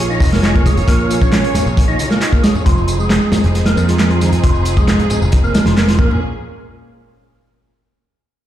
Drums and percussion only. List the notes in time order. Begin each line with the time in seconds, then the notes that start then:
0.11 tambourine
0.20 kick, open hi-hat, tambourine
0.33 snare, tambourine
0.43 snare, clap, closed hi-hat, tambourine
0.56 kick, tambourine
0.66 kick, closed hi-hat, tambourine, high conga
0.77 closed hi-hat, tambourine, low conga
0.88 kick, closed hi-hat, tambourine
1.00 tambourine
1.11 closed hi-hat, tambourine
1.21 kick, tambourine
1.32 snare, clap, closed hi-hat, tambourine
1.44 closed hi-hat, tambourine
1.54 snare, closed hi-hat, tambourine, high conga, low conga
1.66 tambourine
1.77 kick, closed hi-hat, tambourine
1.88 tambourine
1.99 closed hi-hat, tambourine, high conga
2.11 snare, tambourine
2.21 clap, closed hi-hat, tambourine
2.33 kick, tambourine
2.44 snare, closed hi-hat, tambourine
2.55 tambourine, low conga
2.66 kick, closed hi-hat, tambourine
2.78 tambourine
2.88 closed hi-hat, tambourine
3.00 tambourine
3.10 snare, clap, closed hi-hat, tambourine
3.22 tambourine
3.32 snare, closed hi-hat, tambourine, high conga, low conga
3.44 closed hi-hat, tambourine
3.55 snare, closed hi-hat, tambourine
3.66 snare, closed hi-hat
3.77 closed hi-hat, tambourine
3.88 snare, closed hi-hat, tambourine
3.99 snare, clap, closed hi-hat, tambourine
4.10 closed hi-hat, tambourine
4.21 snare, closed hi-hat, tambourine, high conga
4.32 closed hi-hat, tambourine, low conga
4.44 kick, closed hi-hat, tambourine
4.55 tambourine
4.65 closed hi-hat, tambourine
4.77 kick, tambourine
4.88 snare, clap, closed hi-hat, tambourine
4.99 closed hi-hat, tambourine, low conga
5.10 closed hi-hat, tambourine, high conga, low conga
5.22 tambourine
5.32 kick, closed hi-hat, tambourine
5.44 tambourine
5.54 snare, closed hi-hat, tambourine, high conga
5.66 snare, closed hi-hat, tambourine
5.77 snare, clap, closed hi-hat, tambourine
5.88 snare, closed hi-hat, tambourine
5.99 kick
6.11 low conga